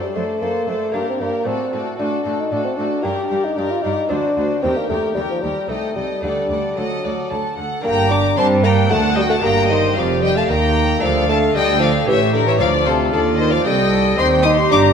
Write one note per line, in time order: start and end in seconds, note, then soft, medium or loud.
0.00 0.13 F#2 soft
0.00 0.17 G3 medium
0.00 0.89 A3 soft
0.00 0.90 C4 soft
0.00 0.90 D4 soft
0.00 0.13 A4 soft
0.00 0.13 C5 medium
0.00 0.14 D5 soft
0.14 0.22 F#2 medium
0.14 0.39 F#2 soft
0.14 0.44 A3 medium
0.14 0.40 A4 medium
0.14 0.39 C5 soft
0.14 0.40 D5 soft
0.40 0.48 F#2 medium
0.40 0.66 F#2 soft
0.40 0.71 A#3 medium
0.40 0.65 A4 medium
0.40 0.66 C5 medium
0.40 0.65 D5 soft
0.66 0.74 F#2 soft
0.66 0.92 F#2 soft
0.66 0.96 A3 medium
0.66 0.93 A4 soft
0.66 0.94 C5 soft
0.66 0.93 D5 soft
0.92 1.01 G2 medium
0.92 1.18 G2 soft
0.92 1.43 A#3 soft
0.92 1.08 A#3 medium
0.92 1.44 D4 soft
0.92 1.18 G4 soft
0.92 1.19 A#4 soft
0.92 1.18 D5 soft
1.10 1.23 C4 medium
1.19 1.27 G2 soft
1.19 1.45 G2 soft
1.19 1.49 A#3 medium
1.19 1.45 G4 soft
1.19 1.46 A#4 soft
1.19 1.45 D5 soft
1.43 1.54 A2 medium
1.43 1.70 A2 soft
1.43 2.99 A3 soft
1.43 1.81 C4 medium
1.43 3.00 D4 soft
1.43 1.71 F#4 medium
1.43 1.73 A4 medium
1.43 1.70 D5 medium
1.71 1.97 A2 soft
1.71 1.81 A2 medium
1.71 1.98 F#4 soft
1.71 1.97 A4 soft
1.71 1.97 D5 medium
1.98 2.23 A2 medium
1.98 2.08 A2 medium
1.98 2.42 D4 medium
1.98 2.25 F#4 soft
1.98 2.24 A4 medium
1.98 2.24 D5 soft
2.25 2.34 A2 medium
2.25 2.50 A2 soft
2.25 2.51 F#4 soft
2.25 2.51 A4 soft
2.25 2.49 D5 soft
2.40 2.53 D#4 medium
2.50 2.60 A2 medium
2.50 2.76 A2 soft
2.50 2.64 D4 medium
2.50 2.76 F#4 medium
2.50 2.76 A4 soft
2.50 2.76 D5 soft
2.65 2.78 C4 medium
2.77 2.86 A2 medium
2.77 3.03 A2 soft
2.77 3.05 D4 medium
2.77 3.04 F#4 soft
2.77 3.04 A4 soft
2.77 3.02 D5 soft
3.03 3.13 G2 medium
3.03 3.29 G2 soft
3.03 4.07 A#3 soft
3.03 4.07 D4 soft
3.03 3.46 G4 medium
3.03 3.28 G4 medium
3.03 3.28 A#4 medium
3.03 3.29 D5 medium
3.29 3.39 G2 medium
3.29 3.55 G2 soft
3.29 3.55 G4 medium
3.29 3.56 A#4 soft
3.29 3.55 D5 soft
3.45 3.58 D#4 medium
3.56 3.66 G2 medium
3.56 3.82 G2 medium
3.56 3.72 D4 medium
3.56 3.82 G4 medium
3.56 3.83 A#4 medium
3.56 3.81 D5 medium
3.71 3.84 F4 medium
3.82 4.08 G2 soft
3.82 3.93 G2 medium
3.82 4.09 D#4 medium
3.82 4.10 G4 soft
3.82 4.10 A#4 medium
3.82 4.08 D5 medium
4.09 4.19 D2 medium
4.09 4.35 D2 soft
4.09 4.61 C4 soft
4.09 4.62 D4 soft
4.09 4.62 D4 medium
4.09 4.35 F#4 medium
4.09 4.36 C5 medium
4.09 4.36 D5 soft
4.36 4.46 D2 medium
4.36 4.61 D2 soft
4.36 4.63 F#4 soft
4.36 4.63 C5 soft
4.36 4.63 D5 soft
4.62 4.72 D#2 medium
4.62 4.88 D#2 soft
4.62 5.66 A#3 soft
4.62 4.79 C4 medium
4.62 5.67 D#4 soft
4.62 4.89 G4 medium
4.62 4.88 A#4 medium
4.62 4.89 G5 medium
4.77 4.88 A#3 medium
4.89 4.98 D#2 soft
4.89 5.14 D#2 medium
4.89 5.14 A3 medium
4.89 5.16 G4 medium
4.89 5.15 A#4 soft
4.89 5.15 G5 soft
5.15 5.24 D#2 medium
5.15 5.41 D#2 medium
5.15 5.21 G3 medium
5.15 5.42 G4 medium
5.15 5.43 A#4 medium
5.15 5.42 G5 medium
5.30 5.44 F3 medium
5.43 5.52 D#2 soft
5.43 5.68 D#2 soft
5.43 5.69 G3 medium
5.43 5.70 G4 soft
5.43 5.70 A#4 medium
5.43 5.67 G5 soft
5.68 5.78 C2 soft
5.68 5.95 A3 medium
5.68 6.20 C4 soft
5.68 6.22 D#4 soft
5.68 5.95 A4 soft
5.68 5.96 D#5 soft
5.68 5.96 G5 soft
5.95 6.05 C2 soft
5.95 6.22 G3 medium
5.95 6.23 A4 soft
5.95 6.23 D#5 soft
5.95 6.24 G5 soft
6.21 6.31 D2 medium
6.21 6.48 D2 soft
6.21 6.79 G3 medium
6.21 7.79 A3 soft
6.21 7.80 D4 soft
6.21 6.50 A4 soft
6.21 6.50 D5 soft
6.21 6.50 F#5 soft
6.50 6.58 D2 medium
6.50 6.75 D2 soft
6.50 6.77 A4 soft
6.50 6.77 D5 soft
6.50 6.76 F#5 soft
6.77 7.01 D2 soft
6.77 6.86 D2 soft
6.77 7.58 F#3 medium
6.77 7.04 A4 soft
6.77 7.02 D#5 medium
6.77 7.02 F#5 soft
7.03 7.28 D2 soft
7.03 7.14 D2 soft
7.03 7.31 A4 soft
7.03 7.31 D5 medium
7.03 7.28 F#5 soft
7.30 7.55 D2 soft
7.30 7.39 D2 soft
7.30 7.57 A4 soft
7.30 7.54 F#5 soft
7.30 7.58 A5 medium
7.56 7.82 D2 soft
7.56 7.66 D2 soft
7.56 7.84 A4 soft
7.56 7.83 F#5 medium
7.56 7.84 F#5 medium
7.81 8.34 G1 medium
7.81 8.34 G2 medium
7.81 8.86 A#3 soft
7.81 8.09 A#3 medium
7.81 8.86 D4 soft
7.81 8.09 G5 medium
7.81 8.09 A#5 medium
7.85 8.34 G4 medium
8.11 8.39 D4 medium
8.11 8.38 A#5 medium
8.11 8.38 D6 medium
8.37 8.90 G2 medium
8.37 8.86 G3 medium
8.37 8.90 G3 medium
8.37 8.66 C4 medium
8.37 8.91 D4 medium
8.37 8.46 A5 medium
8.37 8.46 C6 medium
8.64 8.90 A#3 medium
8.64 8.91 G5 medium
8.64 8.73 A#5 loud
8.86 9.39 C4 medium
8.86 9.40 F#4 medium
8.90 9.40 D2 medium
8.90 9.43 D2 medium
8.90 9.02 A3 medium
8.90 9.44 F#4 medium
8.90 9.17 F#5 medium
8.90 9.17 A5 medium
9.16 9.23 G3 medium
9.16 9.30 D#5 medium
9.16 9.30 G5 medium
9.30 9.36 A3 medium
9.30 9.35 F#5 medium
9.30 9.44 A5 medium
9.39 9.93 A#3 medium
9.39 9.73 A#3 medium
9.39 9.93 D4 medium
9.39 10.98 G4 medium
9.39 9.69 A#5 loud
9.43 9.96 G1 medium
9.43 9.92 G2 medium
9.43 9.96 G2 medium
9.43 11.00 G4 medium
9.43 9.70 G5 medium
9.68 9.96 D#3 medium
9.68 9.96 C5 medium
9.68 9.95 D#5 loud
9.96 10.49 F1 medium
9.96 10.46 F2 medium
9.96 10.49 F2 medium
9.96 10.24 F3 medium
9.96 10.23 D5 medium
9.96 10.23 F5 medium
10.23 10.38 G3 medium
10.23 10.36 D#5 medium
10.23 10.36 G5 loud
10.36 10.49 A3 medium
10.36 10.49 F5 medium
10.36 10.43 A5 medium
10.49 11.02 D#2 medium
10.49 10.99 D#2 medium
10.49 11.02 D#2 medium
10.49 11.04 A#3 medium
10.49 11.02 G5 medium
10.49 11.01 A#5 medium
10.98 12.03 A3 medium
10.98 12.03 D4 medium
10.98 12.04 A4 medium
10.98 12.06 A4 medium
11.03 11.54 D2 medium
11.03 11.52 D2 medium
11.03 11.55 D2 medium
11.03 11.28 F3 medium
11.03 11.29 D5 medium
11.03 11.30 F5 medium
11.28 11.57 A3 medium
11.28 11.56 F5 medium
11.28 11.37 A5 loud
11.54 12.07 D2 medium
11.54 12.07 D3 medium
11.54 12.04 D3 medium
11.54 11.79 G3 medium
11.54 11.81 D#5 medium
11.54 11.81 G5 loud
11.80 11.92 F3 medium
11.80 11.89 D5 medium
11.80 12.08 F5 medium
12.04 12.20 E3 medium
12.04 12.56 A3 medium
12.04 12.58 C#4 medium
12.04 12.59 G4 medium
12.08 12.60 A1 medium
12.08 12.60 A2 medium
12.08 12.57 A2 medium
12.08 12.61 G4 medium
12.08 12.34 C#5 medium
12.08 12.34 E5 medium
12.33 12.48 D3 medium
12.33 12.47 A#4 medium
12.33 12.39 D5 medium
12.47 12.60 E3 medium
12.47 12.61 C#5 medium
12.47 12.53 E5 loud
12.57 13.13 D2 medium
12.57 12.86 F3 medium
12.57 13.10 A3 medium
12.57 14.14 D4 medium
12.57 14.14 F4 medium
12.57 12.87 D5 medium
12.57 12.68 F5 loud
12.61 13.10 D2 medium
12.61 13.64 F4 medium
12.86 13.15 C3 medium
12.86 13.10 A4 medium
12.86 12.94 C5 medium
13.12 13.62 D#2 medium
13.12 13.65 D#2 medium
13.12 13.41 D3 medium
13.12 13.20 A4 medium
13.12 13.38 D5 medium
13.37 13.54 D#3 medium
13.37 13.52 C5 medium
13.37 13.52 D#5 loud
13.51 13.66 F3 medium
13.51 13.65 D5 medium
13.51 13.66 F5 loud
13.65 14.18 C2 medium
13.65 14.21 G3 medium
13.65 14.18 A4 medium
13.65 14.18 D#5 medium
13.65 14.17 G5 medium
14.16 14.68 D#2 medium
14.16 14.93 C4 medium
14.16 14.44 C4 loud
14.16 14.93 G4 medium
14.16 14.46 G5 medium
14.16 14.26 C6 loud
14.43 14.57 D#4 loud
14.43 14.71 C6 medium
14.43 14.51 D#6 loud
14.70 14.93 G1 medium
14.70 14.93 G2 medium
14.70 14.93 D4 loud
14.70 14.93 A#5 loud
14.70 14.80 D6 loud